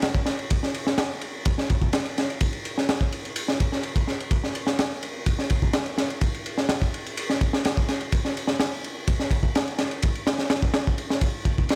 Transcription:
0.02 snare loud
0.02 ride medium
0.15 kick loud
0.26 snare medium
0.26 ride medium
0.39 ride soft
0.50 kick loud
0.50 ride medium
0.63 snare soft
0.74 ride medium
0.87 snare medium
0.98 snare loud
0.98 ride medium
1.21 ride medium
1.45 kick loud
1.45 ride medium
1.58 snare soft
1.70 kick loud
1.70 ride medium
1.82 kick loud
1.93 snare loud
1.93 ride medium
2.05 ride soft
2.18 snare medium
2.18 ride medium
2.30 ride soft
2.41 kick loud
2.41 ride medium
2.53 ride soft
2.65 ride medium
2.78 snare soft
2.89 snare loud
2.89 ride medium
3.01 kick loud
3.12 ride medium
3.25 ride soft
3.36 ride loud
3.48 snare medium
3.60 kick medium
3.60 ride medium
3.72 snare soft
3.83 ride medium
3.96 kick loud
3.96 ride medium
4.08 snare soft
4.20 ride medium
4.31 kick loud
4.31 ride medium
4.44 snare soft
4.55 ride medium
4.67 snare medium
4.79 snare loud
4.79 ride medium
5.03 ride medium
5.26 kick loud
5.26 ride medium
5.39 snare soft
5.50 kick medium
5.50 ride medium
5.62 kick medium
5.73 snare loud
5.73 ride medium
5.86 ride soft
5.98 snare medium
5.98 ride medium
6.10 ride soft
6.21 kick loud
6.21 ride medium
6.34 ride soft
6.46 ride medium
6.58 snare soft
6.69 snare loud
6.69 ride medium
6.82 kick medium
6.94 ride medium
7.06 ride soft
7.17 ride medium
7.30 snare medium
7.41 kick loud
7.41 ride medium
7.53 snare medium
7.65 snare loud
7.65 ride medium
7.77 kick loud
7.88 snare soft
7.88 ride medium
8.01 ride soft
8.12 kick loud
8.12 ride medium
8.25 snare soft
8.37 ride medium
8.47 snare medium
8.60 snare loud
8.60 ride loud
8.84 ride medium
9.07 kick loud
9.07 ride medium
9.20 snare soft
9.31 kick medium
9.31 ride medium
9.43 kick medium
9.55 snare loud
9.55 ride medium
9.68 ride soft
9.79 snare medium
9.79 ride medium
9.91 ride soft
10.02 kick loud
10.02 ride medium
10.15 ride soft
10.27 snare medium
10.27 ride medium
10.39 snare medium
10.50 snare loud
10.50 ride medium
10.62 kick loud
10.74 snare loud
10.74 ride medium
10.87 kick medium
10.98 ride medium
11.10 snare medium
11.21 kick loud
11.21 ride medium
11.45 kick medium
11.45 ride medium
11.58 kick medium
11.69 snare loud
11.69 ride medium

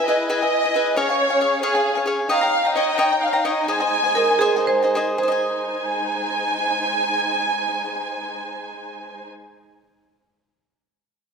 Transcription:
0.00 0.95 E4 medium
0.00 0.95 B4 medium
0.00 0.95 G#5 medium
0.08 0.28 G#4 medium
0.08 0.29 B4 soft
0.08 0.30 D#5 medium
0.08 0.29 E5 medium
0.08 0.29 G#5 medium
0.29 0.41 G#4 medium
0.29 0.41 B4 medium
0.29 0.93 D#5 loud
0.29 0.41 E5 medium
0.29 0.41 G#5 medium
0.42 0.64 B4 soft
0.42 0.64 E5 soft
0.42 0.63 G#5 soft
0.64 0.74 B4 soft
0.64 0.75 E5 soft
0.64 0.75 G#5 medium
0.74 0.95 G#4 medium
0.74 0.96 B4 medium
0.74 0.96 E5 medium
0.74 0.96 G#5 medium
0.96 2.28 C#4 medium
0.96 1.08 G#4 medium
0.96 2.28 G#4 medium
0.96 1.08 C#5 medium
0.96 1.63 C#5 loud
0.96 1.08 F5 medium
0.96 2.28 F5 medium
0.96 1.08 G#5 medium
1.09 1.30 C#5 soft
1.09 1.29 F5 medium
1.09 1.28 G#5 medium
1.30 1.40 C#5 soft
1.30 1.40 F5 medium
1.30 1.40 G#5 medium
1.41 1.62 G#4 soft
1.41 1.62 C#5 medium
1.41 1.62 F5 medium
1.41 1.62 G#5 medium
1.63 1.74 G#4 medium
1.63 2.10 G#4 loud
1.63 1.74 C#5 medium
1.63 1.75 F5 medium
1.63 1.74 G#5 loud
1.75 1.96 C#5 soft
1.75 1.96 F5 soft
1.75 1.94 G#5 medium
1.95 2.06 C#5 soft
1.95 2.06 F5 soft
1.95 2.06 G#5 medium
2.06 2.28 G#4 medium
2.06 2.28 C#5 medium
2.06 2.28 F5 medium
2.06 2.29 G#5 medium
2.29 5.17 D#4 medium
2.29 3.64 C#5 medium
2.29 2.41 C#5 medium
2.29 2.41 D#5 medium
2.29 2.72 F5 loud
2.29 2.41 G5 medium
2.29 3.65 G5 medium
2.29 2.40 A#5 medium
2.41 2.64 D#5 soft
2.41 2.64 G5 medium
2.41 2.63 A#5 medium
2.65 2.76 D#5 soft
2.65 2.75 G5 soft
2.65 2.75 A#5 medium
2.76 2.96 C#5 medium
2.76 2.97 D#5 medium
2.76 2.97 D#5 loud
2.76 2.97 G5 medium
2.76 2.97 A#5 medium
2.97 3.09 C#5 medium
2.97 3.09 D#5 medium
2.97 3.21 G5 loud
2.97 3.09 G5 medium
2.97 3.09 A#5 medium
3.10 3.34 D#5 soft
3.10 3.32 G5 soft
3.10 3.32 A#5 soft
3.22 3.44 F5 medium
3.33 3.44 D#5 soft
3.33 3.44 G5 medium
3.33 3.43 A#5 medium
3.45 3.66 C#5 medium
3.45 3.67 D#5 medium
3.45 3.67 G5 medium
3.45 3.67 A#5 medium
3.66 5.18 G#3 medium
3.66 3.80 G#4 medium
3.66 5.19 C5 medium
3.66 3.80 C5 medium
3.66 3.79 D#5 medium
3.66 4.89 G#5 loud
3.66 3.79 G#5 medium
3.80 4.04 C5 soft
3.80 4.04 D#5 medium
3.80 4.02 G#5 medium
4.04 4.15 C5 soft
4.04 4.15 D#5 medium
4.04 4.15 G#5 medium
4.15 4.39 G#4 medium
4.15 4.40 A#4 medium
4.15 4.40 C5 medium
4.15 4.40 D#5 medium
4.15 4.40 G#5 medium
4.39 4.68 G#4 medium
4.39 4.54 G#4 medium
4.39 4.54 C5 medium
4.39 4.54 D#5 medium
4.39 4.54 G#5 medium
4.56 4.82 C5 soft
4.56 4.82 D#5 soft
4.56 4.81 G#5 medium
4.67 5.16 C5 medium
4.83 4.94 C5 soft
4.83 4.95 D#5 soft
4.83 4.94 G#5 medium
4.95 5.17 G#4 medium
4.95 5.20 C5 medium
4.95 5.21 D#5 medium
4.95 5.21 G#5 medium
5.18 9.27 G#3 medium
5.18 9.27 D#4 medium
5.18 9.57 G#4 medium
5.18 9.53 C5 medium
5.18 9.27 C5 medium
5.18 9.26 G#5 loud
5.23 9.62 C5 medium
5.28 9.67 D#5 medium
5.28 9.71 G#5 medium

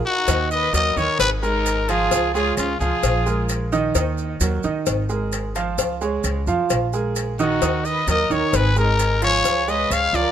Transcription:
0.06 0.49 D#4 medium
0.06 0.48 F#4 loud
0.28 0.72 D#2 loud
0.28 0.66 D#3 medium
0.28 0.66 D#4 medium
0.28 0.66 D#5 medium
0.28 cowbell loud
0.28 maracas medium
0.51 0.73 B4 loud
0.51 0.72 D#5 loud
0.51 maracas soft
0.73 0.95 D#2 medium
0.73 0.92 F#3 medium
0.73 0.93 F#4 medium
0.73 0.93 A#4 medium
0.73 0.96 A#4 medium
0.73 0.99 D#5 loud
0.73 cowbell medium
0.73 maracas medium
0.96 1.08 D#2 loud
0.96 1.34 D#3 medium
0.96 1.34 D#4 medium
0.96 1.20 A#4 medium
0.96 1.19 C#5 loud
0.96 1.35 D#5 medium
0.96 maracas soft
1.19 2.07 G#1 loud
1.19 1.31 G#4 medium
1.19 1.30 B4 loud
1.19 cowbell loud
1.19 maracas medium
1.42 1.80 G#3 medium
1.42 1.86 D#4 medium
1.42 1.80 G#4 medium
1.42 1.91 A#4 medium
1.42 1.81 A#4 medium
1.42 maracas soft
1.66 cowbell medium
1.66 maracas medium
1.89 2.26 F3 loud
1.89 2.27 F4 loud
1.89 2.34 F4 medium
1.89 2.33 G#4 medium
1.89 2.27 F5 medium
1.89 cowbell medium
1.89 maracas soft
2.11 2.55 C#2 medium
2.11 cowbell loud
2.11 maracas medium
2.34 2.72 G#3 medium
2.34 2.56 F4 medium
2.34 2.55 G#4 medium
2.34 2.72 G#4 medium
2.34 2.72 C#5 medium
2.34 maracas soft
2.57 2.79 C#2 loud
2.57 2.79 C#4 medium
2.57 2.79 F4 medium
2.57 cowbell medium
2.57 maracas medium
2.80 2.91 C#2 loud
2.80 3.18 F3 medium
2.80 3.45 F4 medium
2.80 3.18 F4 medium
2.80 3.45 G#4 medium
2.80 3.19 F5 medium
2.80 maracas soft
3.03 3.91 A#1 loud
3.03 cowbell loud
3.03 maracas medium
3.26 3.64 G#3 medium
3.26 3.64 G#4 medium
3.26 3.64 A#4 medium
3.26 maracas soft
3.49 cowbell medium
3.49 maracas medium
3.72 3.91 D#3 medium
3.72 3.91 D#4 medium
3.72 3.91 D#5 loud
3.72 maracas soft
3.95 4.39 D#2 loud
3.95 4.33 D#3 medium
3.95 4.33 D#4 medium
3.95 4.33 D#5 medium
3.95 cowbell loud
3.95 maracas medium
4.18 maracas soft
4.41 4.63 D#2 loud
4.41 4.60 F#3 medium
4.41 4.60 F#4 medium
4.41 4.60 A#4 medium
4.41 cowbell medium
4.41 maracas medium
4.63 4.75 D#2 loud
4.63 5.01 D#3 medium
4.63 5.02 D#4 medium
4.63 5.02 D#5 medium
4.63 maracas soft
4.86 5.75 G#1 loud
4.86 cowbell loud
4.86 maracas medium
5.09 5.47 G#3 medium
5.09 5.47 G#4 medium
5.09 5.48 A#4 medium
5.09 maracas soft
5.32 cowbell medium
5.32 maracas medium
5.55 5.93 F3 medium
5.55 5.93 F4 loud
5.55 5.93 F5 medium
5.55 cowbell medium
5.55 maracas soft
5.78 6.22 C#2 medium
5.78 cowbell loud
5.78 maracas medium
6.01 6.39 G#3 medium
6.01 6.39 G#4 medium
6.01 6.39 C#5 medium
6.01 maracas soft
6.24 6.46 C#2 loud
6.24 cowbell medium
6.24 maracas medium
6.47 6.58 F2 loud
6.47 6.85 F3 medium
6.47 6.85 F4 medium
6.47 6.85 F5 medium
6.47 maracas soft
6.70 7.58 A#1 loud
6.70 cowbell loud
6.70 maracas medium
6.93 7.31 G#3 medium
6.93 7.31 G#4 medium
6.93 7.31 A#4 medium
6.93 maracas soft
7.16 cowbell medium
7.16 maracas medium
7.39 7.58 D#3 loud
7.39 7.58 D#4 medium
7.39 7.82 D#4 medium
7.39 7.87 F#4 medium
7.39 7.58 D#5 medium
7.39 maracas soft
7.62 8.05 D#2 medium
7.62 7.99 D#3 medium
7.62 8.00 D#4 loud
7.62 8.00 D#5 medium
7.62 cowbell loud
7.62 maracas medium
7.85 8.09 B4 medium
7.85 8.08 D#5 medium
7.85 maracas soft
8.07 8.29 D#2 loud
8.07 8.26 F#3 medium
8.07 8.26 F#4 medium
8.07 8.27 A#4 medium
8.07 8.30 A#4 medium
8.07 8.34 D#5 medium
8.07 cowbell medium
8.07 maracas medium
8.30 8.41 D#2 loud
8.30 8.68 D#3 medium
8.30 8.68 D#4 medium
8.30 8.54 A#4 medium
8.30 8.57 C#5 medium
8.30 8.68 D#5 medium
8.30 maracas soft
8.53 9.41 G#1 loud
8.53 8.77 G#4 medium
8.53 8.77 B4 loud
8.53 cowbell loud
8.53 maracas medium
8.76 9.14 G#3 medium
8.76 9.20 D#4 medium
8.76 9.14 G#4 medium
8.76 9.14 A#4 medium
8.76 9.20 A#4 loud
8.76 maracas soft
8.99 cowbell medium
8.99 maracas medium
9.22 9.60 F3 medium
9.22 9.60 F4 loud
9.22 9.65 G#4 medium
9.22 9.71 C#5 loud
9.22 9.60 F5 loud
9.22 cowbell medium
9.22 maracas soft
9.44 9.88 C#2 loud
9.44 cowbell medium
9.44 maracas medium
9.68 10.05 G#3 medium
9.68 10.06 G#4 medium
9.68 9.91 B4 loud
9.68 10.06 C#5 medium
9.68 9.94 D#5 medium
9.68 maracas soft
9.90 10.12 C#2 medium
9.90 10.14 C#5 medium
9.90 10.17 F5 loud
9.90 cowbell medium
9.90 maracas medium
10.13 10.24 C#2 loud
10.13 10.31 F3 medium
10.13 10.31 F4 medium
10.13 10.31 A#4 medium
10.13 10.31 D5 loud
10.13 10.31 F5 medium
10.13 maracas soft

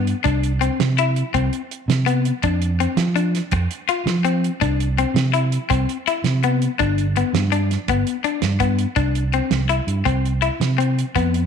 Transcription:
0.00 0.12 G2 medium
0.00 0.16 B3 medium
0.07 closed hi-hat soft
0.24 0.68 C2 loud
0.24 0.51 D4 loud
0.24 kick medium
0.24 closed hi-hat medium
0.43 closed hi-hat soft
0.61 0.88 C4 medium
0.61 closed hi-hat medium
0.80 1.22 C3 loud
0.80 snare medium
0.80 closed hi-hat medium
0.98 1.25 E4 medium
0.98 closed hi-hat medium
1.16 closed hi-hat soft
1.34 1.48 C2 medium
1.34 1.61 C4 medium
1.34 kick medium
1.34 closed hi-hat medium
1.53 closed hi-hat soft
1.71 closed hi-hat medium
1.88 2.30 C3 loud
1.88 snare medium
1.88 closed hi-hat medium
2.06 2.33 B3 medium
2.06 closed hi-hat medium
2.25 closed hi-hat soft
2.43 2.86 F2 medium
2.43 2.70 D4 medium
2.43 kick medium
2.43 closed hi-hat medium
2.62 closed hi-hat medium
2.80 3.06 C4 medium
2.80 closed hi-hat soft
2.97 3.39 F3 loud
2.97 snare medium
2.97 closed hi-hat medium
3.16 3.42 D4 medium
3.16 closed hi-hat soft
3.35 snare soft
3.35 closed hi-hat medium
3.51 3.66 F2 loud
3.51 muted clean electric guitar stroke medium
3.51 kick medium
3.51 closed hi-hat medium
3.71 closed hi-hat soft
3.89 4.15 F4 medium
3.89 closed hi-hat soft
4.06 4.48 F3 loud
4.06 snare medium
4.06 closed hi-hat medium
4.25 4.51 C4 medium
4.25 closed hi-hat medium
4.44 closed hi-hat soft
4.61 5.03 C2 loud
4.61 4.88 D4 medium
4.61 kick medium
4.61 closed hi-hat medium
4.80 closed hi-hat medium
4.98 5.25 C4 medium
4.98 closed hi-hat medium
5.14 5.57 C3 loud
5.14 snare medium
5.14 closed hi-hat medium
5.34 5.60 E4 medium
5.34 closed hi-hat soft
5.52 closed hi-hat medium
5.70 5.85 C2 loud
5.70 5.96 C4 medium
5.70 kick medium
5.70 closed hi-hat medium
5.89 closed hi-hat soft
6.07 6.33 E4 medium
6.07 closed hi-hat soft
6.24 6.66 C3 loud
6.24 snare medium
6.24 closed hi-hat medium
6.43 6.70 B3 medium
6.43 closed hi-hat medium
6.62 closed hi-hat soft
6.79 7.22 G1 medium
6.79 7.06 D4 loud
6.79 kick medium
6.79 closed hi-hat medium
6.98 closed hi-hat soft
7.16 7.43 B3 medium
7.16 closed hi-hat soft
7.33 7.76 G2 loud
7.33 snare loud
7.33 closed hi-hat medium
7.52 7.78 D4 medium
7.52 closed hi-hat medium
7.71 snare soft
7.71 closed hi-hat medium
7.88 8.02 G1 loud
7.88 8.15 B3 medium
7.88 kick medium
7.88 closed hi-hat medium
8.07 closed hi-hat medium
8.24 8.51 D4 medium
8.24 closed hi-hat soft
8.42 8.85 G2 medium
8.42 snare medium
8.42 closed hi-hat medium
8.60 8.87 B3 medium
8.60 kick medium
8.60 closed hi-hat medium
8.79 closed hi-hat soft
8.96 9.39 C2 medium
8.96 9.23 D4 medium
8.96 kick medium
8.96 closed hi-hat medium
9.15 closed hi-hat soft
9.33 9.60 C4 medium
9.33 closed hi-hat soft
9.50 9.79 C2 medium
9.50 snare medium
9.50 closed hi-hat medium
9.69 9.96 E4 medium
9.69 closed hi-hat soft
9.87 10.01 G2 medium
9.87 closed hi-hat soft
10.05 10.48 C2 medium
10.05 10.32 C4 medium
10.05 kick medium
10.05 closed hi-hat medium
10.25 closed hi-hat soft
10.42 10.69 E4 medium
10.42 closed hi-hat soft
10.60 11.02 C3 medium
10.60 snare medium
10.60 closed hi-hat medium
10.78 11.05 C4 medium
10.78 closed hi-hat medium
10.99 closed hi-hat soft
11.16 11.46 F2 medium
11.16 11.42 B3 medium
11.16 kick medium
11.16 closed hi-hat medium
11.34 closed hi-hat medium

